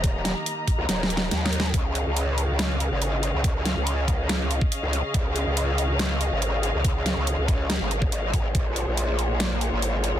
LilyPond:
<<
  \new Staff \with { instrumentName = "String section" } { \time 4/4 \key des \lydian \tempo 4 = 141 << { <ees bes ees'' bes''>1 | <des des' ees'' f''>1~ | <des des' ees'' f''>1~ | <des des' ees'' f''>1~ |
<des des' ees'' f''>1 | <bes f' c'' des''>1 | } \\ { g'1 | aes'1~ | aes'1~ | aes'1~ |
aes'1~ | aes'1 | } >> }
  \new Staff \with { instrumentName = "Wobble bass" } { \clef bass \time 4/4 \key des \lydian ees,,8. r4 des,16 ees,,4 ees,4 | des,8. des,2 aes,,4 des,16~ | des,8. des,2 r8 des,8 r16 | des,8. des,2 aes,,4 des,16~ |
des,8. des,8 des,4 aes,,4.~ aes,,16 | bes,,8. bes,,2 aes,,4 bes,,16 | }
  \new DrumStaff \with { instrumentName = "Drums" } \drummode { \time 4/4 <hh bd>8 <hh sn>8 hh8 <hh bd>8 \tuplet 3/2 { <hh sn>16 r16 sn16 hh16 sn16 r16 <hh sn>16 r16 sn16 hh16 sn16 r16 } | <hh bd>8 hh8 hh8 hh8 <hh sn>8 hh8 hh8 hh8 | <hh bd>8 <hh sn>8 hh8 <hh bd>8 <hh sn>8 hh16 bd16 hh8 hh8 | <hh bd>8 hh8 hh8 hh8 <hh sn>8 hh8 hh8 hh8 |
<hh bd>8 <hh sn>8 hh8 <hh bd>8 <hh sn>8 hh16 bd16 hh8 <hh bd>8 | <hh bd>8 hh8 hh8 hh8 <hh sn>8 hh8 hh8 hh8 | }
>>